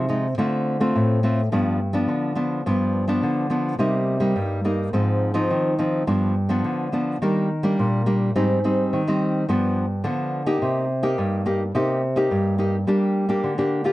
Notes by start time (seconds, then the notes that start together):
Already playing: C3
0.09 F3 G#3 D#4
0.38 D3 A3 C4 F4
0.80 A3 C4 F4
0.95 A2
1.23 A3 C4 F4
1.52 G2 F3 B3 D4
1.93 F3 B3 D4
2.08 D3
2.35 F3 B3 D4
2.66 G2 F3 B3 D4
3.08 F3 B3 D4
3.23 D3
3.50 F3 B3 D4
3.79 C3 G3 A#3 D#4
4.20 G3 A#3 D#4
4.36 G2
4.65 G3 A#3 D#4
4.93 G#2 F3 C4 D#4
5.34 F3 C4 D#4
5.50 D#3
5.79 F3 C4 D#4
6.07 G2 F3 B3 D4
6.49 F3 B3 D4
6.64 D3
6.92 F3 B3 D4
7.22 D#3 G3 A#3 D4
7.63 G3 A#3 D4
7.79 A#2
8.06 G3 A#3 D4
8.36 G#2 G3 C4 D#4
8.64 G3 C4 D#4
8.93 D#3
9.08 G3 C4 D#4
9.49 G2 F3 B3 D4
10.04 D3 F3 B3 D4
10.46 A#3 D#4 G4
10.62 C3
11.03 A#3 D#4 G4
11.18 G2
11.46 A#3 D#4 G4
11.75 C3 A#3 D#4 G4
12.16 A#3 D#4 G4
12.31 G2
12.58 A#3 D#4 G4
12.87 G3 A#3 D4 G4
13.29 A#3 D4 G4
13.44 D3
13.58 A#3 D4 G4
13.84 A#3 F4 G4